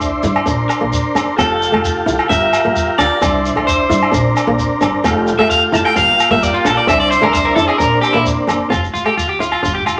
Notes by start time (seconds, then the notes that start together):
Already playing: C2 D4 E4 C5
0.01 shekere
0.23 G2 E4, shekere
0.36 low agogo
0.45 A#1 D4 A#4, shekere
0.69 muted clean electric guitar stroke, low agogo, shekere
0.81 A#1 A#3
0.93 shekere
1.15 F#1 D4, low agogo, shekere
1.36 F1 C4 F4 G4 A4, low agogo, shekere
1.62 shekere
1.72 F1 A3, low agogo
1.85 shekere
2.06 C2 E4, shekere
2.19 low agogo
2.29 G1 D4 A#4 E5, shekere
2.53 low agogo, shekere
2.65 G1 A#3
2.76 shekere
2.98 D2 D4 D5, low agogo, shekere
3.21 C2 C4 D4 E4 C5, low agogo, shekere
3.45 shekere
3.56 C2 A3, low agogo
3.67 C5, shekere
3.90 G2 E4, shekere
4.03 low agogo
4.12 A#1 C4 D4 A#4, shekere
4.37 low agogo, shekere
4.47 A#1 A#3
4.59 shekere
4.81 G1 D4, low agogo, shekere
5.04 F1 A3 C4 F4 G4, low agogo, shekere
5.27 shekere
5.39 F1 A3 E5, low agogo
5.50 F5, shekere
5.72 F1 E4 A5, shekere
5.85 G5, low agogo
5.96 G1 A#3 F5, muted nylon-string guitar stroke, shekere
6.20 low agogo, shekere
6.31 G1 A#3 E5
6.43 D5, shekere
6.54 F4
6.65 A#1 D4 A4, low agogo, shekere
6.77 D5
6.87 C2 C4 D4 E4 E5, low agogo, shekere
7.00 D5
7.10 C5, shekere
7.22 C2 A3 A#4, low agogo
7.33 C5, shekere
7.45 A#4
7.56 F2 E4 A4, shekere
7.68 G#4, low agogo
7.78 A#1 A#3 D4 A#4, shekere
8.01 G4, low agogo, shekere
8.13 A#1 A#3 E4
8.26 shekere
8.47 F#1 D4, low agogo, shekere
8.70 F1 C4 F4, low agogo, shekere
8.84 shekere
8.94 F1 F4, shekere
9.05 A3 G4, low agogo
9.17 D2 F4, shekere
9.29 G4
9.40 E4 F4, shekere
9.52 F4, low agogo
9.62 G1 D4 F4, shekere
9.75 G4
9.86 F1 F4, low agogo, shekere